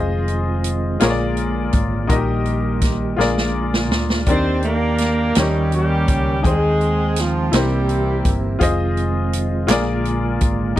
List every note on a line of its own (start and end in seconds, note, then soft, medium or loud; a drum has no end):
0.00 0.97 F1 medium
0.00 0.99 D#3 medium
0.00 2.06 G#3 medium
0.00 0.98 C4 soft
0.00 0.98 F4 medium
0.00 0.99 F4 medium
0.00 0.99 G#4 medium
0.00 1.01 C5 medium
0.00 1.02 D#5 medium
0.28 closed hi-hat soft
0.64 closed hi-hat medium
1.00 1.69 A#1 medium
1.00 2.06 A#2 medium
1.00 2.08 D3 medium
1.00 4.23 A#3 medium
1.00 2.09 F4 medium
1.00 2.08 F4 medium
1.00 2.09 G#4 medium
1.00 2.08 A#4 medium
1.00 1.09 C#5 medium
1.00 snare medium
1.00 closed hi-hat medium
1.10 2.14 D5 medium
1.37 closed hi-hat soft
1.73 2.07 G#1 medium
1.73 kick medium
1.73 closed hi-hat medium
2.07 3.14 A#1 medium
2.07 3.14 A#2 medium
2.07 3.17 D#3 medium
2.07 3.18 G3 soft
2.07 3.17 D#4 medium
2.07 2.16 F#4 soft
2.07 3.17 G4 medium
2.07 3.18 A#4 medium
2.07 3.19 D#5 medium
2.07 kick medium
2.07 closed hi-hat medium
2.15 3.21 G4 medium
2.45 closed hi-hat soft
2.81 kick medium
2.81 snare soft
2.81 closed hi-hat medium
3.17 3.91 A#1 medium
3.17 4.23 A#2 medium
3.17 4.26 D3 medium
3.17 4.26 G#3 medium
3.17 4.26 F4 medium
3.17 4.27 G#4 medium
3.17 4.27 A#4 medium
3.17 snare soft
3.21 4.28 D5 medium
3.38 snare soft
3.74 snare medium
3.91 4.24 D2 medium
3.91 snare medium
4.10 snare medium
4.26 5.32 D#2 medium
4.26 6.42 D#3 medium
4.26 5.32 D#3 soft
4.26 6.42 A#3 soft
4.26 4.62 C4 medium
4.26 5.35 D4 medium
4.26 5.34 D4 soft
4.26 5.35 G4 soft
4.26 4.65 G4 medium
4.26 5.36 A#4 soft
4.26 4.62 C5 medium
4.26 5.37 D5 medium
4.26 7.49 G5 medium
4.26 kick medium
4.26 closed hi-hat medium
4.62 5.40 A#3 medium
4.62 5.33 D4 medium
4.62 5.33 G4 medium
4.62 closed hi-hat soft
4.67 5.37 A#3 medium
4.67 5.37 A#4 medium
4.98 snare soft
4.98 closed hi-hat medium
5.35 6.04 D#2 medium
5.35 6.41 D#3 medium
5.35 5.73 G3 medium
5.35 5.73 A#3 medium
5.35 6.43 C#4 soft
5.35 5.73 C#4 medium
5.35 6.41 D#4 medium
5.35 6.45 G4 soft
5.35 5.73 G4 medium
5.35 6.45 A#4 soft
5.35 snare medium
5.35 closed hi-hat medium
5.39 6.46 C#5 medium
5.72 6.41 G3 medium
5.72 6.42 G3 medium
5.72 6.41 A#3 medium
5.72 6.41 C#4 medium
5.72 6.42 G4 medium
5.72 closed hi-hat soft
6.08 6.41 C#2 medium
6.08 kick medium
6.08 closed hi-hat medium
6.42 7.49 D#2 medium
6.42 7.49 D#3 medium
6.42 7.52 D#3 medium
6.42 7.52 G#3 soft
6.42 7.52 C4 soft
6.42 7.52 D#4 medium
6.42 7.53 G#4 medium
6.42 7.52 G5 soft
6.42 kick medium
6.42 closed hi-hat medium
6.46 7.22 G#3 medium
6.46 7.18 G#3 medium
6.46 7.50 C4 medium
6.46 7.18 G#4 medium
6.46 7.54 C5 medium
6.81 closed hi-hat soft
7.16 7.54 F3 medium
7.16 7.54 F4 medium
7.16 snare soft
7.16 closed hi-hat medium
7.21 7.58 F3 medium
7.51 8.21 C2 medium
7.51 8.57 C3 medium
7.51 8.60 E3 medium
7.51 8.60 A#3 medium
7.51 9.68 C4 medium
7.51 8.60 E4 medium
7.51 8.58 E4 medium
7.51 8.61 G4 soft
7.51 8.60 G4 medium
7.51 8.61 A#4 soft
7.51 8.60 C5 medium
7.51 snare medium
7.51 closed hi-hat medium
7.56 8.36 G3 medium
7.56 8.59 A#3 soft
7.56 8.36 G4 medium
7.89 closed hi-hat soft
8.25 8.58 G1 medium
8.25 kick medium
8.25 closed hi-hat medium
8.59 9.65 F1 medium
8.59 9.68 D#3 medium
8.59 10.75 G#3 soft
8.59 9.65 F4 medium
8.59 9.67 F4 medium
8.59 9.67 G#4 medium
8.59 9.69 C5 medium
8.59 9.70 D#5 medium
8.59 kick medium
8.59 closed hi-hat medium
8.97 closed hi-hat soft
9.33 closed hi-hat medium
9.67 10.37 A#1 medium
9.67 10.73 A#2 medium
9.67 10.76 D3 medium
9.67 10.80 A#3 medium
9.67 10.76 F4 medium
9.67 10.77 G#4 medium
9.67 10.77 A#4 medium
9.67 10.78 D5 medium
9.67 snare loud
9.67 clap medium
9.67 closed hi-hat medium
10.05 closed hi-hat soft
10.41 10.75 G#1 medium
10.41 kick medium
10.41 closed hi-hat medium
10.76 10.80 D#3 medium
10.76 10.80 G3 medium
10.76 10.80 D#4 medium
10.76 10.80 G4 medium